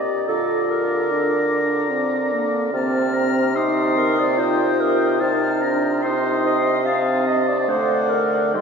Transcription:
Already playing: french horn G4, clarinet D5
0.28 bassoon D3, french horn F4, clarinet A4, oboe A#5, flute D6
0.70 clarinet A#4
1.11 french horn D4
1.91 french horn C4
2.32 french horn A#3
2.73 bassoon C3, french horn C4, oboe A5, flute F6
3.14 oboe A#5
3.55 french horn D#4, clarinet G4, oboe C6, flute D#6
3.97 clarinet A#4
4.19 clarinet D5
4.37 french horn F4, clarinet C5, oboe G5, flute D#6
4.81 clarinet A#4
5.20 bassoon C3, french horn D#4, oboe A5, flute F6
5.62 french horn D4, oboe A#5
6.02 french horn D#4, clarinet C5, oboe C6, flute D#6
6.47 clarinet D#5
6.86 french horn C4, clarinet F5, oboe A5
7.28 clarinet D#5
7.48 clarinet D5
7.68 bassoon D3, french horn A3, clarinet C5, oboe F#5, flute D6
8.10 clarinet A#4
8.54 bassoon D#3, french horn G3, clarinet A4, oboe G5, flute C6

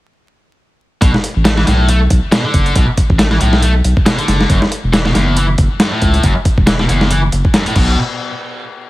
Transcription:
1.02 sub bass B1, distorted electric guitar B2, kick, closed hi-hat
1.14 snare
1.24 closed hi-hat
1.36 sub bass A1
1.45 distorted electric guitar A3, snare, closed hi-hat
1.58 distorted electric guitar E3, snare
1.67 sub bass B1, distorted electric guitar A2, snare, closed hi-hat
1.89 distorted electric guitar A3, closed hi-hat
2.10 sub bass B1, kick, closed hi-hat
2.32 distorted electric guitar B2, snare, closed hi-hat
2.45 distorted electric guitar D3
2.54 sub bass F#1, kick, closed hi-hat
2.66 closed hi-hat
2.75 sub bass B1, distorted electric guitar B2, kick, closed hi-hat
2.97 kick, closed hi-hat
3.10 sub bass A1, kick
3.19 distorted electric guitar A3, snare, closed hi-hat
3.31 distorted electric guitar E3, snare
3.41 sub bass B1, distorted electric guitar A2, closed hi-hat
3.53 snare
3.62 distorted electric guitar A3, closed hi-hat
3.84 sub bass B1, closed hi-hat
3.97 kick
4.06 distorted electric guitar B2, snare, closed hi-hat
4.18 distorted electric guitar D3, closed hi-hat
4.28 sub bass F#1, snare, closed hi-hat
4.41 snare
4.49 sub bass F#1, distorted electric guitar F#2, kick, closed hi-hat
4.62 snare
4.72 closed hi-hat
4.84 sub bass E1
4.93 distorted electric guitar E3, snare, closed hi-hat
5.05 distorted electric guitar B2, snare
5.15 sub bass F#1, distorted electric guitar E2, snare, closed hi-hat
5.36 distorted electric guitar E3, closed hi-hat
5.58 sub bass F#1, kick, closed hi-hat
5.80 distorted electric guitar F#2, snare, closed hi-hat
5.92 distorted electric guitar A2
6.02 sub bass C#2, kick, closed hi-hat
6.14 closed hi-hat
6.23 sub bass F#1, distorted electric guitar F#2, kick, closed hi-hat
6.45 kick, closed hi-hat
6.58 sub bass E1, kick
6.67 distorted electric guitar E3, snare, closed hi-hat
6.79 distorted electric guitar B2, snare
6.89 sub bass F#1, distorted electric guitar E2, closed hi-hat
7.01 snare
7.11 distorted electric guitar E3, closed hi-hat
7.32 sub bass F#1, closed hi-hat
7.45 kick
7.54 distorted electric guitar F#2, snare, closed hi-hat
7.66 distorted electric guitar A2, closed hi-hat
7.76 sub bass B1, distorted electric guitar B2, kick, crash

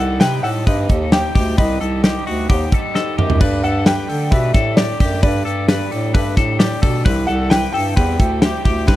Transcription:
Already playing: bass clarinet C2, upright piano D#4 G4 C5 D#5 F#5, overdriven electric guitar G4
0.00 overdriven electric guitar G3 D#4, clean electric guitar A4
0.20 bass clarinet C3, overdriven electric guitar D#3 G3 D#4, upright piano D#4 G4 C5 D#5 G5, clean electric guitar B4, snare, hi-hat pedal, open hi-hat
0.24 overdriven electric guitar G4
0.43 bass clarinet A2, overdriven electric guitar G3 D#4 G4, clean electric guitar A4, upright piano F#5, hi-hat pedal, open hi-hat
0.66 bass clarinet G2, overdriven electric guitar C3 D#3 G3 D#4 G4, upright piano D#4 G4 C5 D#5, clean electric guitar B4, kick, hi-hat pedal, open hi-hat
0.89 bass clarinet D#2, overdriven electric guitar G3 D#4 G4, clean electric guitar A4, kick, hi-hat pedal, open hi-hat
1.11 overdriven electric guitar D#3 G3 D#4 G4, upright piano D#4 G4 C5 D#5 G5, clean electric guitar G4, snare, hi-hat pedal, open hi-hat
1.34 bass clarinet D2, overdriven electric guitar G3 D#4 G4, clean electric guitar G4, kick, hi-hat pedal, open hi-hat
1.57 bass clarinet C2, overdriven electric guitar C3 D#3 G3 D#4 G4, upright piano D#4 G4 C5 D#5, clean electric guitar B4, kick, hi-hat pedal, open hi-hat
1.80 bass clarinet C2, overdriven electric guitar G3 D#4 G4, clean electric guitar A4, hi-hat pedal, open hi-hat
2.02 overdriven electric guitar D#3 G3 D#4 G4, upright piano D#4 G4 C5 D#5, clean electric guitar G4, snare, hi-hat pedal, open hi-hat
2.26 bass clarinet D2, overdriven electric guitar G3 D#4 G4, clean electric guitar F#4, hi-hat pedal, open hi-hat
2.48 bass clarinet D#2, overdriven electric guitar C3 D#3 G3 D#4 G4, upright piano D#4 G4 C5 F#5, clean electric guitar G4, kick, hi-hat pedal, open hi-hat
2.71 overdriven electric guitar G3 D#4 G4, clean electric guitar A4, kick, hi-hat pedal, open hi-hat
2.93 overdriven electric guitar D#3 G3 D#4 G4, upright piano D#4 G4 C5 D#5, clean electric guitar A4, snare
3.16 bass clarinet F#2, overdriven electric guitar G3 D#4 G4, clean electric guitar G4, mid tom
3.30 floor tom
3.39 bass clarinet G2, overdriven electric guitar G3 A3 D4 G4, upright piano D4 G4 A4 D5, clean electric guitar B4, kick, splash
3.62 bass clarinet G2, overdriven electric guitar A3 D4 G4, clean electric guitar A4, upright piano F#5, hi-hat pedal, open hi-hat
3.84 overdriven electric guitar G3 A3 D4 G4, upright piano D4 G4 A4 D5 G5, clean electric guitar B4, snare, hi-hat pedal, open hi-hat
4.08 bass clarinet D3, overdriven electric guitar A3 D4 G4, clean electric guitar A4, hi-hat pedal, open hi-hat
4.31 bass clarinet B2, overdriven electric guitar G3 A3 D4 G4, upright piano D4 G4 A4 D5 E5, clean electric guitar B4, kick, hi-hat pedal, open hi-hat
4.53 bass clarinet A2, overdriven electric guitar A3 D4 G4, clean electric guitar A4, kick, snare, hi-hat pedal, open hi-hat
4.76 overdriven electric guitar G3 A3 D4 G4, upright piano D4 G4 A4 D5, clean electric guitar G4, snare, hi-hat pedal, open hi-hat
4.99 bass clarinet F#2, overdriven electric guitar A3 D4 G4, clean electric guitar G4, kick, hi-hat pedal, open hi-hat
5.22 bass clarinet G2, overdriven electric guitar G3 A3 D4 G4, upright piano D4 G4 A4 D5, clean electric guitar B4, kick, hi-hat pedal, open hi-hat
5.45 bass clarinet G2, overdriven electric guitar A3 D4 G4, clean electric guitar A4, hi-hat pedal, open hi-hat
5.68 overdriven electric guitar G3 A3 D4 G4, upright piano D4 G4 A4 D5, clean electric guitar B4, snare, hi-hat pedal, open hi-hat
5.91 bass clarinet A2, overdriven electric guitar A3 D4 G4, clean electric guitar A4, hi-hat pedal, open hi-hat
6.14 bass clarinet G2, overdriven electric guitar G3 A3 D4 G4, upright piano D4 G4 A4 E5, clean electric guitar B4, kick, hi-hat pedal, open hi-hat
6.36 bass clarinet A2, overdriven electric guitar A3 D4 G4, clean electric guitar A4, kick, snare, hi-hat pedal, open hi-hat
6.59 overdriven electric guitar G3 A3 D4 G4, upright piano D4 G4 A4 D5, clean electric guitar G4, snare, hi-hat pedal, open hi-hat
6.81 bass clarinet B2, overdriven electric guitar A3 D4 G4, clean electric guitar A4, kick, hi-hat pedal, open hi-hat
7.05 bass clarinet C2, overdriven electric guitar C3 E3 G3 E4 G4, upright piano E4 G4 C5 E5, clean electric guitar B4, kick, hi-hat pedal, open hi-hat
7.27 bass clarinet C2, overdriven electric guitar G3 E4 G4, clean electric guitar A4, upright piano F#5, hi-hat pedal, open hi-hat
7.50 overdriven electric guitar E3 G3 E4 G4, upright piano E4 G4 C5 G5, clean electric guitar B4, snare, hi-hat pedal, open hi-hat
7.72 bass clarinet G2, overdriven electric guitar G3 E4 G4, clean electric guitar A4, upright piano G5, hi-hat pedal, open hi-hat
7.96 bass clarinet E2, overdriven electric guitar C3 E3 G3 E4 G4, upright piano E4 G4 C5 E5, clean electric guitar B4, kick, hi-hat pedal, open hi-hat
8.18 bass clarinet D2, overdriven electric guitar G3 E4 G4, clean electric guitar A4, kick, hi-hat pedal, open hi-hat
8.41 overdriven electric guitar E3 G3 E4 G4, upright piano E4 G4 C5 G5, clean electric guitar G4, snare, hi-hat pedal, open hi-hat
8.63 bass clarinet D2, overdriven electric guitar G3 E4 G4, clean electric guitar G4, kick, hi-hat pedal, open hi-hat
8.86 bass clarinet C2, overdriven electric guitar C3 E3 G3 E4 G4, upright piano E4 G4 C5 E5, clean electric guitar B4, kick, snare

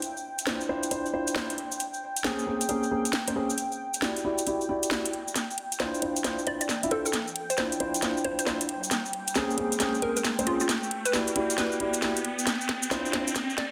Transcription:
Already playing: analog synth pad G5
0.02 closed hi-hat, cabasa
0.17 cabasa
0.39 closed hi-hat, cabasa
0.47 grand piano D4 E4 F4 C5, snare, cabasa
0.61 cabasa
0.69 grand piano D4 E4 F4 C5
0.83 closed hi-hat, cabasa
0.91 grand piano D4 E4 F4 C5, closed hi-hat, cabasa
1.06 cabasa
1.13 grand piano D4 E4 F4 C5
1.27 closed hi-hat, cabasa
1.36 grand piano D4 E4 F4 C5, snare, cabasa
1.50 closed hi-hat, cabasa
1.58 closed hi-hat
1.72 cabasa
1.80 closed hi-hat, cabasa
1.94 cabasa
2.16 closed hi-hat, cabasa
2.24 grand piano A#3 C4 C#4 G#4, snare, cabasa
2.39 cabasa
2.47 grand piano A#3 C4 C#4 G#4
2.61 closed hi-hat, cabasa
2.69 grand piano A#3 C4 C#4 G#4, closed hi-hat, cabasa
2.83 cabasa
2.91 grand piano A#3 C4 C#4 G#4
3.05 closed hi-hat, cabasa
3.13 snare, cabasa
3.27 grand piano A#3 C4 C#4 C5, closed hi-hat, cabasa
3.36 grand piano A#3 C4 C#4 G#4
3.50 cabasa
3.58 closed hi-hat, cabasa
3.72 cabasa
3.94 closed hi-hat, cabasa
4.02 grand piano E4 F#4 G4 D5, snare, cabasa
4.17 closed hi-hat, cabasa
4.24 grand piano E4 F#4 G4 D5
4.38 closed hi-hat, cabasa
4.47 grand piano E4 F#4 G4 D5, closed hi-hat, cabasa
4.61 cabasa
4.69 grand piano E4 F#4 G4 D5
4.83 closed hi-hat, cabasa
4.91 grand piano E4 F#4 G4 D5, snare, cabasa
5.05 closed hi-hat, cabasa
5.13 closed hi-hat
5.28 cabasa
5.36 analog synth pad G5, snare, closed hi-hat, riser, cabasa
5.51 cabasa
5.58 closed hi-hat
5.72 closed hi-hat, cabasa
5.80 grand piano D4 E4 F4 C5, snare, cabasa
5.95 cabasa
6.02 grand piano D4 E4 F4 C5, closed hi-hat
6.16 closed hi-hat, cabasa
6.24 grand piano D4 E4 F4 C5, snare, closed hi-hat, cabasa
6.38 cabasa
6.47 grand piano D4 E4 F4 C5, synth pluck D5, closed hi-hat
6.61 synth pluck D5, closed hi-hat, cabasa
6.69 snare, cabasa
6.83 grand piano D4 E4 F4 E5, closed hi-hat, cabasa
6.91 grand piano D4 E4 F4 C5, synth pluck A4, closed hi-hat
7.05 synth pluck A4, cabasa
7.13 snare, closed hi-hat, cabasa
7.27 cabasa
7.36 closed hi-hat
7.50 synth pluck C5, closed hi-hat, cabasa
7.57 grand piano D4 E4 F4 C5, synth pluck C5, snare, cabasa
7.72 closed hi-hat, cabasa
7.80 grand piano D4 E4 F4 C5, closed hi-hat
7.94 closed hi-hat, cabasa
8.02 grand piano D4 E4 F4 C5, snare, closed hi-hat, cabasa
8.17 cabasa
8.24 grand piano D4 E4 F4 C5, synth pluck C5, closed hi-hat
8.39 synth pluck C5, closed hi-hat, cabasa
8.47 grand piano D4 E4 F4 C5, snare, cabasa
8.61 closed hi-hat, cabasa
8.69 closed hi-hat
8.84 cabasa
8.91 snare, closed hi-hat, cabasa
9.05 cabasa
9.13 closed hi-hat
9.28 closed hi-hat, cabasa
9.35 grand piano A#3 C4 C#4 G#4, snare, cabasa
9.50 cabasa
9.58 grand piano A#3 C4 C#4 G#4, closed hi-hat
9.72 closed hi-hat, cabasa
9.80 grand piano A#3 C4 C#4 G#4, snare, closed hi-hat, cabasa
9.95 cabasa
10.02 grand piano A#3 C4 C#4 G#4, synth pluck A#4, closed hi-hat
10.17 synth pluck A#4, closed hi-hat, cabasa
10.24 snare, cabasa
10.39 grand piano A#3 C4 C#4 C5, closed hi-hat, cabasa
10.47 grand piano A#3 C4 C#4 G#4, synth pluck F4, closed hi-hat
10.60 synth pluck F4, cabasa
10.69 snare, closed hi-hat, cabasa
10.83 cabasa
10.91 closed hi-hat
11.05 synth pluck B4, closed hi-hat, cabasa
11.13 grand piano E4 F#4 G4 D5, snare, cabasa
11.27 closed hi-hat, cabasa
11.36 grand piano E4 F#4 G4 D5, closed hi-hat
11.50 closed hi-hat, cabasa
11.58 grand piano E4 F#4 G4 D5, synth pluck B4, snare, closed hi-hat, cabasa
11.72 cabasa
11.80 grand piano E4 F#4 G4 D5, closed hi-hat
11.93 closed hi-hat, cabasa
12.02 grand piano E4 F#4 G4 D5, snare, cabasa
12.17 closed hi-hat, cabasa
12.25 closed hi-hat
12.39 cabasa
12.47 analog synth pad G5, snare, closed hi-hat, cabasa
12.61 cabasa
12.69 snare, closed hi-hat
12.82 closed hi-hat, cabasa
12.91 grand piano D4 E4 F4 C5, snare, cabasa
13.06 cabasa
13.13 grand piano D4 E4 F4 C5, snare, closed hi-hat
13.27 closed hi-hat, cabasa
13.35 snare, closed hi-hat, cabasa
13.50 cabasa
13.58 synth pluck D5, snare, closed hi-hat

